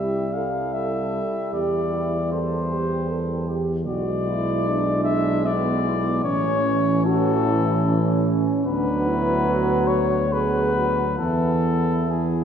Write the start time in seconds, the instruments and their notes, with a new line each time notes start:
Already playing: tuba C2, trombone G3, euphonium E4, french horn section G4, cornet E5
0.33 french horn section A4, cornet F5
0.73 cornet E5
1.53 tuba E2, french horn section G4, cornet D5
1.94 french horn section E4
2.32 french horn section A4, cornet C5
2.71 french horn section G4
3.08 french horn section A4
3.46 french horn section G4
3.87 tuba B1, trombone G#3, euphonium E4, french horn section F#4, cornet D5
4.28 french horn section E4
4.68 french horn section D4
5.04 cornet E5
5.45 french horn section B3, cornet D5
6.24 tuba A1, trombone E3, french horn section C#4, euphonium C#4, cornet C#5
7.05 french horn section F#4, cornet A4
7.45 french horn section E4
7.85 french horn section C#4
8.65 tuba D2, trombone F#3, euphonium B3, french horn section D4, cornet B4
9.07 french horn section E4
9.47 french horn section F#4
9.87 cornet C#5
10.31 trombone F#3, euphonium B3, french horn section G#4, cornet B4
10.73 french horn section F#4
11.17 tuba E2, trombone E3, euphonium B3, french horn section E4, cornet A4
12.09 trombone E3, euphonium B3, cornet G#4